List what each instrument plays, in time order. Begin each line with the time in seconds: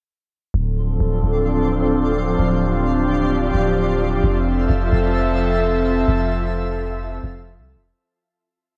0.54 808-style bass D1, analog synth pad F3 C4 D4 A4, synth texture F4 D5 C6
1.00 808-style bass D1
1.24 808-style bass D1
2.39 808-style bass D1, analog synth pad G4
3.54 808-style bass D1
4.23 808-style bass F1, analog synth pad C4 A4 E5, synth texture E5 A5
4.70 808-style bass F1
4.93 808-style bass F1
6.08 808-style bass F1
7.23 808-style bass F1
7.58 808-style bass C2
7.75 808-style bass F1